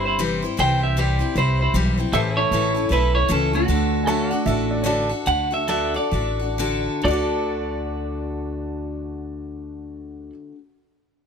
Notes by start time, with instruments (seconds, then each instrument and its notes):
Already playing: upright bass G1, steel-string acoustic guitar G3 C4 E4 C5, pedal steel guitar G4 C5 E5
0.05 clean electric guitar E4 C5
0.19 steel-string acoustic guitar C3 E3 G3 C4 E4 C5
0.42 steel-string acoustic guitar G3 C4 E4 C5
0.57 upright bass C2, steel-string acoustic guitar C3 E3 G3 C4 E4 C5, clean electric guitar C5 G5
0.83 clean electric guitar G4 E5
0.97 steel-string acoustic guitar C3 E3 G3 C4 E4 C5, clean electric guitar G4 D5
1.19 steel-string acoustic guitar G3 C4 E4 C5
1.36 upright bass C2, steel-string acoustic guitar G3 C4 E4 C5, clean electric guitar E4 C5
1.61 clean electric guitar E4 C5
1.74 upright bass B1, steel-string acoustic guitar C3 E3 G3 C4 E4 C5
1.98 steel-string acoustic guitar G3 C4 E4 C5
2.13 upright bass A1, steel-string acoustic guitar A2 E3 A3 C#4 E4 A4, pedal steel guitar G4 C5 E5, clean electric guitar A4 E5
2.34 clean electric guitar E4 C#5, pedal steel guitar C#5
2.38 pedal steel guitar A4
2.51 upright bass A1, steel-string acoustic guitar A2 E3 A3 C#4 E4 A4
2.75 steel-string acoustic guitar A3 C#4 E4 A4
2.89 upright bass B1, steel-string acoustic guitar A3 C#4 E4 A4, clean electric guitar E4 B4
3.15 clean electric guitar E4 C#5
3.29 upright bass C#2, steel-string acoustic guitar A2 E3 A3 C#4 E4 A4, clean electric guitar C#4 A4
3.53 clean electric guitar A3 F#4, steel-string acoustic guitar A3 C#4 E4 A4
3.68 upright bass D2, steel-string acoustic guitar D3 A3 D4 F#4 A4
4.04 steel-string acoustic guitar D3, pedal steel guitar A4, upright piano G#5 A5
4.08 steel-string acoustic guitar A3 D4 F#4 A4, pedal steel guitar C#5 E5
4.24 pedal steel guitar F5
4.28 steel-string acoustic guitar A4, pedal steel guitar D5, upright piano F#5
4.33 steel-string acoustic guitar D4 F#4, pedal steel guitar F#5
4.46 upright bass A1, steel-string acoustic guitar A3 D4 F#4 A4, upright piano E5
4.71 upright piano D5
4.82 steel-string acoustic guitar D3 A3 D4 F#4, upright piano C#5
4.86 steel-string acoustic guitar A4, upright piano D5
5.09 steel-string acoustic guitar D4 F#4 A4
5.26 upright bass D2, steel-string acoustic guitar D3 A3 D4 F#4 A4, clean electric guitar F#5
5.51 steel-string acoustic guitar D4 F#4 A4, clean electric guitar E5
5.68 steel-string acoustic guitar D3 A3 D4 F#4 A4, pedal steel guitar A4 D5 F#5, clean electric guitar E5
5.94 steel-string acoustic guitar D4 F#4 A4, clean electric guitar D5
6.11 upright bass A1, steel-string acoustic guitar A3 D4 F#4 A4
6.39 steel-string acoustic guitar D4 F#4 A4
6.58 steel-string acoustic guitar D3 A3 D4 F#4 A4
7.02 upright bass D2, steel-string acoustic guitar D3 A3, upright piano F#4 D5, pedal steel guitar A4 D5, clean electric guitar D5
7.07 steel-string acoustic guitar D4 F#4, pedal steel guitar F#5
7.13 steel-string acoustic guitar A4